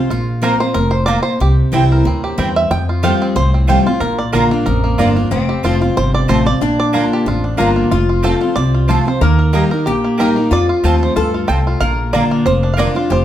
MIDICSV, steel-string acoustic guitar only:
0, 0, Header, 1, 2, 480
1, 0, Start_track
1, 0, Key_signature, -2, "major"
1, 0, Tempo, 324851
1, 161, Time_signature, 4, 2, 24, 8
1, 19574, End_track
2, 0, Start_track
2, 0, Title_t, "Steel-string acoustic guitar"
2, 0, Program_c, 0, 25
2, 0, Note_on_c, 0, 60, 48
2, 0, Note_on_c, 0, 65, 63
2, 150, Note_off_c, 0, 65, 0
2, 164, Note_off_c, 0, 60, 0
2, 165, Note_on_c, 0, 46, 90
2, 614, Note_on_c, 0, 53, 90
2, 628, Note_on_c, 0, 58, 86
2, 640, Note_on_c, 0, 60, 93
2, 650, Note_on_c, 0, 65, 104
2, 871, Note_off_c, 0, 65, 0
2, 880, Note_off_c, 0, 53, 0
2, 887, Note_off_c, 0, 58, 0
2, 888, Note_on_c, 0, 65, 69
2, 893, Note_off_c, 0, 60, 0
2, 918, Note_on_c, 0, 60, 54
2, 1080, Note_off_c, 0, 46, 0
2, 1103, Note_on_c, 0, 45, 96
2, 1105, Note_off_c, 0, 65, 0
2, 1120, Note_off_c, 0, 60, 0
2, 1571, Note_off_c, 0, 45, 0
2, 1597, Note_on_c, 0, 46, 95
2, 2058, Note_off_c, 0, 46, 0
2, 2073, Note_on_c, 0, 48, 91
2, 2536, Note_on_c, 0, 52, 86
2, 2547, Note_on_c, 0, 55, 97
2, 2556, Note_on_c, 0, 60, 90
2, 2572, Note_on_c, 0, 64, 97
2, 2995, Note_off_c, 0, 48, 0
2, 3008, Note_off_c, 0, 52, 0
2, 3013, Note_off_c, 0, 55, 0
2, 3018, Note_off_c, 0, 60, 0
2, 3026, Note_off_c, 0, 64, 0
2, 3031, Note_on_c, 0, 45, 94
2, 3496, Note_off_c, 0, 45, 0
2, 3511, Note_on_c, 0, 43, 99
2, 3976, Note_off_c, 0, 43, 0
2, 4003, Note_on_c, 0, 41, 94
2, 4477, Note_on_c, 0, 53, 98
2, 4491, Note_on_c, 0, 55, 95
2, 4497, Note_on_c, 0, 60, 93
2, 4504, Note_on_c, 0, 65, 96
2, 4920, Note_off_c, 0, 41, 0
2, 4939, Note_off_c, 0, 53, 0
2, 4946, Note_off_c, 0, 55, 0
2, 4949, Note_off_c, 0, 60, 0
2, 4953, Note_off_c, 0, 65, 0
2, 4960, Note_on_c, 0, 45, 101
2, 5443, Note_on_c, 0, 53, 89
2, 5459, Note_on_c, 0, 55, 101
2, 5460, Note_on_c, 0, 60, 107
2, 5471, Note_on_c, 0, 65, 101
2, 5689, Note_off_c, 0, 65, 0
2, 5695, Note_off_c, 0, 53, 0
2, 5703, Note_off_c, 0, 55, 0
2, 5704, Note_off_c, 0, 60, 0
2, 5707, Note_on_c, 0, 65, 70
2, 5736, Note_on_c, 0, 60, 55
2, 5879, Note_off_c, 0, 45, 0
2, 5916, Note_off_c, 0, 65, 0
2, 5928, Note_on_c, 0, 46, 96
2, 5931, Note_off_c, 0, 60, 0
2, 6402, Note_on_c, 0, 50, 96
2, 6410, Note_on_c, 0, 58, 92
2, 6424, Note_on_c, 0, 62, 95
2, 6435, Note_on_c, 0, 65, 99
2, 6650, Note_off_c, 0, 65, 0
2, 6655, Note_off_c, 0, 50, 0
2, 6659, Note_off_c, 0, 58, 0
2, 6666, Note_off_c, 0, 62, 0
2, 6667, Note_on_c, 0, 65, 70
2, 6699, Note_on_c, 0, 62, 58
2, 6843, Note_off_c, 0, 46, 0
2, 6877, Note_off_c, 0, 65, 0
2, 6891, Note_on_c, 0, 41, 105
2, 6892, Note_off_c, 0, 62, 0
2, 7374, Note_on_c, 0, 50, 93
2, 7384, Note_on_c, 0, 58, 102
2, 7391, Note_on_c, 0, 62, 109
2, 7405, Note_on_c, 0, 65, 103
2, 7616, Note_off_c, 0, 65, 0
2, 7622, Note_off_c, 0, 50, 0
2, 7627, Note_off_c, 0, 58, 0
2, 7631, Note_off_c, 0, 62, 0
2, 7634, Note_on_c, 0, 65, 65
2, 7665, Note_on_c, 0, 62, 54
2, 7806, Note_off_c, 0, 41, 0
2, 7840, Note_off_c, 0, 65, 0
2, 7856, Note_off_c, 0, 62, 0
2, 7859, Note_on_c, 0, 41, 95
2, 8330, Note_on_c, 0, 53, 86
2, 8343, Note_on_c, 0, 57, 98
2, 8353, Note_on_c, 0, 60, 97
2, 8361, Note_on_c, 0, 65, 102
2, 8571, Note_off_c, 0, 65, 0
2, 8581, Note_off_c, 0, 53, 0
2, 8587, Note_off_c, 0, 57, 0
2, 8588, Note_on_c, 0, 65, 69
2, 8592, Note_off_c, 0, 60, 0
2, 8628, Note_on_c, 0, 60, 52
2, 8770, Note_off_c, 0, 41, 0
2, 8798, Note_off_c, 0, 65, 0
2, 8818, Note_off_c, 0, 60, 0
2, 8822, Note_on_c, 0, 48, 96
2, 9288, Note_on_c, 0, 53, 91
2, 9303, Note_on_c, 0, 57, 91
2, 9313, Note_on_c, 0, 60, 105
2, 9318, Note_on_c, 0, 65, 93
2, 9527, Note_off_c, 0, 65, 0
2, 9540, Note_off_c, 0, 53, 0
2, 9545, Note_on_c, 0, 65, 66
2, 9548, Note_off_c, 0, 57, 0
2, 9553, Note_off_c, 0, 60, 0
2, 9580, Note_on_c, 0, 60, 51
2, 9733, Note_off_c, 0, 48, 0
2, 9757, Note_off_c, 0, 65, 0
2, 9775, Note_off_c, 0, 60, 0
2, 9786, Note_on_c, 0, 46, 94
2, 10256, Note_on_c, 0, 50, 91
2, 10272, Note_on_c, 0, 58, 90
2, 10281, Note_on_c, 0, 62, 95
2, 10286, Note_on_c, 0, 65, 92
2, 10695, Note_off_c, 0, 46, 0
2, 10712, Note_off_c, 0, 50, 0
2, 10720, Note_off_c, 0, 58, 0
2, 10725, Note_off_c, 0, 62, 0
2, 10727, Note_off_c, 0, 65, 0
2, 10731, Note_on_c, 0, 41, 98
2, 11208, Note_on_c, 0, 50, 89
2, 11223, Note_on_c, 0, 58, 100
2, 11234, Note_on_c, 0, 62, 108
2, 11237, Note_on_c, 0, 65, 103
2, 11648, Note_off_c, 0, 41, 0
2, 11668, Note_off_c, 0, 50, 0
2, 11676, Note_off_c, 0, 58, 0
2, 11681, Note_off_c, 0, 62, 0
2, 11683, Note_off_c, 0, 65, 0
2, 11702, Note_on_c, 0, 41, 99
2, 12171, Note_on_c, 0, 53, 93
2, 12187, Note_on_c, 0, 57, 96
2, 12192, Note_on_c, 0, 60, 89
2, 12201, Note_on_c, 0, 65, 91
2, 12403, Note_off_c, 0, 65, 0
2, 12421, Note_on_c, 0, 65, 61
2, 12424, Note_off_c, 0, 53, 0
2, 12431, Note_off_c, 0, 57, 0
2, 12434, Note_off_c, 0, 60, 0
2, 12459, Note_on_c, 0, 60, 55
2, 12614, Note_off_c, 0, 41, 0
2, 12637, Note_off_c, 0, 65, 0
2, 12656, Note_off_c, 0, 60, 0
2, 12656, Note_on_c, 0, 48, 104
2, 13129, Note_on_c, 0, 53, 87
2, 13141, Note_on_c, 0, 57, 89
2, 13156, Note_on_c, 0, 60, 100
2, 13160, Note_on_c, 0, 65, 105
2, 13359, Note_off_c, 0, 65, 0
2, 13377, Note_on_c, 0, 65, 62
2, 13382, Note_off_c, 0, 53, 0
2, 13387, Note_off_c, 0, 60, 0
2, 13389, Note_off_c, 0, 57, 0
2, 13405, Note_on_c, 0, 60, 54
2, 13571, Note_off_c, 0, 48, 0
2, 13595, Note_off_c, 0, 65, 0
2, 13609, Note_off_c, 0, 60, 0
2, 13615, Note_on_c, 0, 51, 92
2, 14079, Note_on_c, 0, 55, 85
2, 14092, Note_on_c, 0, 58, 85
2, 14107, Note_on_c, 0, 63, 93
2, 14113, Note_on_c, 0, 67, 102
2, 14328, Note_off_c, 0, 67, 0
2, 14337, Note_off_c, 0, 55, 0
2, 14344, Note_off_c, 0, 58, 0
2, 14346, Note_on_c, 0, 67, 59
2, 14351, Note_off_c, 0, 63, 0
2, 14383, Note_on_c, 0, 63, 56
2, 14530, Note_off_c, 0, 51, 0
2, 14559, Note_off_c, 0, 67, 0
2, 14577, Note_off_c, 0, 63, 0
2, 14581, Note_on_c, 0, 46, 101
2, 15068, Note_on_c, 0, 55, 85
2, 15075, Note_on_c, 0, 58, 89
2, 15081, Note_on_c, 0, 63, 98
2, 15092, Note_on_c, 0, 67, 92
2, 15300, Note_off_c, 0, 67, 0
2, 15311, Note_off_c, 0, 55, 0
2, 15315, Note_off_c, 0, 58, 0
2, 15318, Note_off_c, 0, 63, 0
2, 15318, Note_on_c, 0, 67, 58
2, 15347, Note_on_c, 0, 63, 50
2, 15492, Note_off_c, 0, 46, 0
2, 15525, Note_off_c, 0, 67, 0
2, 15539, Note_off_c, 0, 63, 0
2, 15542, Note_on_c, 0, 41, 92
2, 16012, Note_on_c, 0, 53, 87
2, 16015, Note_on_c, 0, 57, 85
2, 16029, Note_on_c, 0, 60, 94
2, 16040, Note_on_c, 0, 65, 107
2, 16451, Note_off_c, 0, 41, 0
2, 16469, Note_off_c, 0, 53, 0
2, 16470, Note_off_c, 0, 57, 0
2, 16477, Note_off_c, 0, 60, 0
2, 16483, Note_off_c, 0, 65, 0
2, 16496, Note_on_c, 0, 43, 102
2, 16950, Note_off_c, 0, 43, 0
2, 16982, Note_on_c, 0, 45, 93
2, 17433, Note_off_c, 0, 45, 0
2, 17455, Note_on_c, 0, 46, 95
2, 17925, Note_on_c, 0, 50, 84
2, 17944, Note_on_c, 0, 58, 94
2, 17952, Note_on_c, 0, 62, 94
2, 17960, Note_on_c, 0, 65, 95
2, 18366, Note_off_c, 0, 46, 0
2, 18383, Note_off_c, 0, 50, 0
2, 18393, Note_off_c, 0, 58, 0
2, 18396, Note_off_c, 0, 62, 0
2, 18400, Note_off_c, 0, 65, 0
2, 18416, Note_on_c, 0, 41, 98
2, 18884, Note_on_c, 0, 50, 98
2, 18898, Note_on_c, 0, 58, 99
2, 18910, Note_on_c, 0, 62, 102
2, 18911, Note_on_c, 0, 65, 110
2, 19119, Note_off_c, 0, 65, 0
2, 19135, Note_off_c, 0, 50, 0
2, 19137, Note_on_c, 0, 65, 59
2, 19142, Note_off_c, 0, 58, 0
2, 19148, Note_off_c, 0, 62, 0
2, 19166, Note_on_c, 0, 62, 51
2, 19325, Note_off_c, 0, 41, 0
2, 19350, Note_off_c, 0, 65, 0
2, 19363, Note_on_c, 0, 41, 90
2, 19364, Note_off_c, 0, 62, 0
2, 19574, Note_off_c, 0, 41, 0
2, 19574, End_track
0, 0, End_of_file